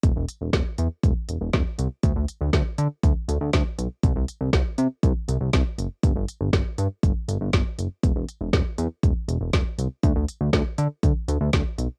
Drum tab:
HH |xxxxxxxx|xxxxxxxx|xxxxxxxx|xxxxxxxx|
SD |--o---o-|--o---o-|--o---o-|--o---o-|
BD |o-o-o-o-|o-o-o-o-|o-o-o-o-|o-o-o-o-|

HH |xxxxxxxx|xxxxxxxx|
SD |--o---o-|--o---o-|
BD |o-o-o-o-|o-o-o-o-|